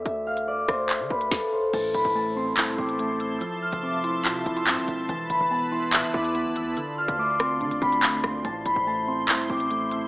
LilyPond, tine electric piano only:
\new Staff \with { instrumentName = "Tine electric piano" } { \time 4/4 \key a \minor \tempo 4 = 143 r1 | a,4 a8 c'8 e'8 c'8 a4 | f4 c'8 e'8 f'8 e'8 c'4 | e4 b8 e'8 e''8 e'8 b4 |
d4 a8 c'8 d'8 c'8 a4 | a,4 a8 c'8 e'8 c'8 a4 | }